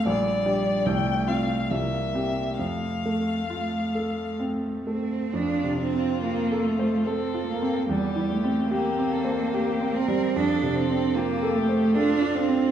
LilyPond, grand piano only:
\new Staff \with { instrumentName = "Grand piano" } { \time 3/4 \key f \major \tempo 4 = 72 bes,,8 <d' g'>8 c,8 <c' f'>8 c,8 <c' g'>8 | f,8 a8 f'8 a'8 c'8 a8 | \tuplet 3/2 { f,8 c8 c'8 f'8 a'8 c''8 a'8 f'8 c'8 } | \tuplet 3/2 { e,8 e8 c'8 g'8 c'8 c''8 g'8 c'8 g8 } |
\tuplet 3/2 { f,8 c8 c'8 f'8 a'8 c''8 a'8 f'8 c'8 } | }